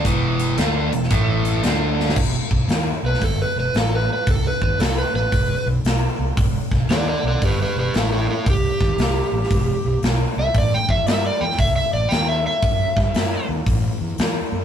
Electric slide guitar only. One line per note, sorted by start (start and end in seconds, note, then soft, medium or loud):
0.00 1.60 A4 medium
3.06 3.22 B4 medium
3.24 3.40 A4 medium
3.42 3.58 B4 medium
3.60 3.75 B4 loud
3.77 3.93 A4 medium
3.95 4.11 B4 medium
4.13 4.29 B4 medium
4.31 4.46 A4 medium
4.47 4.62 B4 medium
4.63 4.80 B4 medium
4.80 4.97 A4 medium
4.98 5.14 B4 medium
5.16 5.66 B4 loud
6.91 7.07 A4 medium
6.91 7.07 D5 loud
7.08 7.24 A4 medium
7.08 7.25 D5 medium
7.28 7.42 A4 medium
7.28 7.43 D5 medium
7.45 7.60 G4 medium
7.45 7.61 B4 medium
7.62 7.77 G4 medium
7.62 7.78 B4 loud
7.79 7.94 G4 medium
7.79 7.95 B4 medium
7.96 8.11 E4 medium
7.96 8.12 A4 loud
8.13 8.28 E4 medium
8.13 8.29 A4 medium
8.30 8.46 E4 medium
8.30 8.47 A4 medium
8.50 10.01 G4 loud
10.39 10.55 E5 loud
10.58 10.73 D5 medium
10.74 10.90 G5 medium
10.90 11.07 E5 loud
11.09 11.25 E5 medium
11.26 11.42 D5 medium
11.41 11.58 G5 medium
11.59 11.75 E5 medium
11.76 11.93 E5 medium
11.94 12.10 D5 medium
12.09 12.27 G5 medium
12.29 12.45 E5 medium
12.47 13.47 E5 medium